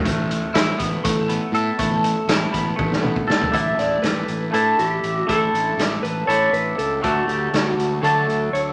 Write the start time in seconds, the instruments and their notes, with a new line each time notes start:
0.05 fingered electric bass A1, clean electric guitar A3, kick, closed hi-hat
0.31 closed hi-hat
0.54 fingered electric bass A1, clean electric guitar E4, snare, closed hi-hat
0.79 fingered electric bass A1, clean electric guitar B3, kick, closed hi-hat
1.04 fingered electric bass A1, clean electric guitar A3, kick, closed hi-hat
1.29 clean electric guitar B3, closed hi-hat
1.52 fingered electric bass A2, clean electric guitar A4, closed hi-hat
1.79 fingered electric bass A1, clean electric guitar A3, kick, closed hi-hat
2.04 closed hi-hat
2.27 fingered electric bass A1, clean electric guitar E4, snare, closed hi-hat
2.53 fingered electric bass A1, clean electric guitar B3, kick, closed hi-hat
2.76 fingered electric bass A1, clean electric guitar A3, kick, high tom
2.93 snare
3.02 clean electric guitar B3, mid tom
3.16 kick
3.27 fingered electric bass A2, clean electric guitar A4, snare
3.41 floor tom
3.51 fingered electric bass A1, clean electric guitar A3 D4 E4 A4, electric slide guitar E5, kick, closed hi-hat
3.78 fingered electric bass A1, electric slide guitar D5, snare, closed hi-hat
4.02 fingered electric bass A1, electric slide guitar B4, snare, closed hi-hat
4.28 fingered electric bass A1, closed hi-hat
4.51 fingered electric bass A2, clean electric guitar A3 D4 E4 A4, electric slide guitar A4, closed hi-hat
4.79 fingered electric bass A1, electric slide guitar G4, closed hi-hat
5.03 fingered electric bass A1, closed hi-hat
5.17 electric slide guitar F#4
5.27 fingered electric bass A1, clean electric guitar A3 D4 E4 A4, electric slide guitar A4, kick, closed hi-hat
5.53 fingered electric bass A1, closed hi-hat
5.77 fingered electric bass A1, snare, closed hi-hat
6.03 fingered electric bass A1, electric slide guitar B4, closed hi-hat
6.27 fingered electric bass A1, clean electric guitar A3 D4 E4 A4, electric slide guitar C#5, closed hi-hat
6.53 fingered electric bass A1, electric slide guitar B4, closed hi-hat
6.78 fingered electric bass C#2, electric slide guitar A4, closed hi-hat
7.01 fingered electric bass D2, clean electric guitar D3 F#3 A3 D4 A4, electric slide guitar F#4, kick, closed hi-hat
7.27 fingered electric bass D2, electric slide guitar G4, closed hi-hat
7.53 fingered electric bass D2, electric slide guitar F#4, snare, closed hi-hat
7.77 fingered electric bass D2, closed hi-hat
8.01 clean electric guitar D3 F#3 A3 D4 A4, fingered electric bass D3, electric slide guitar A4, closed hi-hat
8.27 fingered electric bass D2, closed hi-hat
8.53 fingered electric bass D2, electric slide guitar C#5, closed hi-hat